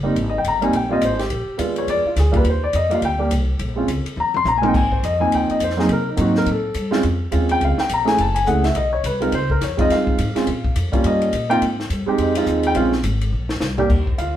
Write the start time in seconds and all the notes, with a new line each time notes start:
Already playing: F#1
0.03 G3 A#3 C4 D#4
0.16 G#1, kick, ride
0.30 D#5
0.38 G5
0.45 G1 A#5, kick, hi-hat pedal, ride
0.61 G3 A#3 C4 D#4 G#5, ride
0.73 A#1 G5, kick, ride
0.89 G3 A#3 C4 F4 D#5
1.01 G#1 C5, kick, hi-hat pedal, ride
1.19 G4, snare, ride
1.30 A#1, kick, ride
1.48 muted upright bass stroke
1.57 D#2 G#3 B3 D4 F4, kick, hi-hat pedal, ride
1.76 C#5, ride
1.87 F2 D5, kick, ride
2.04 F4, muted upright bass stroke
2.16 D2 G#4, kick, snare, hi-hat pedal, ride
2.32 G3 A#3 D4 F4, kick, ride
2.36 B4
2.44 D#2, kick, ride
2.50 C5
2.64 D5
2.73 F2 D#5, kick, hi-hat pedal, ride
2.89 G3 A#3 D4 F4, ride
2.94 F5
3.02 D2 G5, kick, ride
3.18 G3 A#3 D4 G4
3.31 C2, kick, hi-hat pedal, ride
3.59 A#1, kick, ride
3.76 G#3 C4 C#4 F4
3.88 C#2, kick, hi-hat pedal, ride
4.05 muted upright bass stroke, ride
4.16 D#2 A#5, mid tom
4.34 C6, mid tom
4.44 A#1 A#5, hi-hat pedal, mid tom
4.58 G#2 G#5
4.62 F3 A#3 C4 D#4, mid tom
4.68 G5
4.74 G#1 G#5, kick, crash
4.92 C5, kick
5.03 F2 D#5, kick, hi-hat pedal, ride
5.20 F3 A#3 C4 D#4 G#5
5.32 D#2 G5, kick, ride
5.50 D#5, muted upright bass stroke, ride
5.60 F2, kick, hi-hat pedal, ride
5.64 C5
5.70 snare
5.77 F#3 A#3 C4 D#4 G#4, snare
5.89 C3 A#4, kick, ride
6.09 D#4
6.17 G#2 F#3 A#3 C4 D#4, kick, hi-hat pedal, ride
6.21 F#4
6.35 A#4, snare
6.46 A2, kick, ride
6.52 A4
6.74 G2, kick, hi-hat pedal, ride
6.91 G#3 C4 C#4 F4, snare
7.03 F2, kick, ride
7.31 D#2 G#3 C4 C#4 F4, kick, hi-hat pedal, ride
7.49 G5, ride
7.61 C#2 F5, kick, ride
7.77 G5, muted upright bass stroke, snare
7.89 A#1, kick, hi-hat pedal, ride
7.94 A#5
8.05 A3 C#4 E4 G#4 G#5, snare, ride
8.18 F#1 A5, kick, ride
8.35 G#5, ride
8.46 C#2 A3 C#4 E4 G#4 F#5, kick, hi-hat pedal
8.64 E5, snare, ride
8.75 B1 D#5, kick, ride
8.93 C#5
9.04 C2 B4, kick, hi-hat pedal, ride
9.20 G#3 C4 D#4 F4 A#4, ride
9.32 C#2 C5, kick, ride
9.50 A#4, kick
9.61 F2 C#5, kick, snare, hi-hat pedal, ride
9.77 G#3 C4 D#4 F4 D#5, kick, ride
9.90 G2 F5, kick, snare, ride
10.07 kick
10.18 G#2, kick, hi-hat pedal, ride
10.35 G#3 C4 C#4 F4, muted upright bass stroke, snare, ride
10.47 A#2, kick, ride
10.64 kick
10.76 F2, kick, hi-hat pedal, ride
10.92 G3 A#3 C#4 F4, muted upright bass stroke, kick, ride
11.04 G2 D#5, ride
11.22 ride
11.33 A#2, kick, hi-hat pedal, ride
11.49 A#3 C4 D#4 F4 G5, ride
11.61 G#2, kick, ride
11.80 snare
11.90 G2, kick, hi-hat pedal, ride
12.06 G#3 C4 D#4 G4, muted upright bass stroke
12.18 F2 D#5, kick, ride
12.35 G#3 C4 D#4 F4, ride
12.46 D#2, kick, hi-hat pedal
12.63 G5, ride
12.75 A#1 G#3 C4 C#4 F4, kick, ride
12.92 snare
13.04 G#1, kick, hi-hat pedal, ride
13.21 ride
13.32 A#1
13.49 snare
13.60 C2, snare, hi-hat pedal
13.77 D#2 G3 A#3 D4 G4, floor tom
13.90 D#2, kick, crash
14.07 kick
14.18 D2 F4 F5, kick, hi-hat pedal, ride